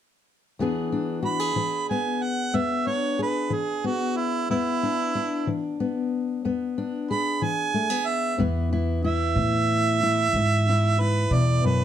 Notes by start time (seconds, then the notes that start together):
0.59 E2 E3 B3 D4 G#4
0.92 D4
1.23 F#4 B5
1.40 G#4
1.56 E3
1.89 B3 G#5
2.23 F#5
2.53 E2 B3 E5
2.87 D4 C#5
3.19 G#4 B4
3.50 E3 G#4
3.84 B3 F#4
4.17 E4
4.50 E2 B3 E4
4.83 D4
5.15 D4
5.47 E3
5.80 B3
6.45 E2 B3
6.78 D4
7.11 G#4 B5
7.42 E3 G#5
7.74 A3
7.90 B3
8.07 E5
8.38 E2 E3 B3 E4
8.73 E4
9.04 E4 E5
9.36 E2 A2
10.03 E4
10.33 E2 G#2
10.69 E4
11.00 E4 B4
11.30 E2 B2 D5
11.64 F#2 B4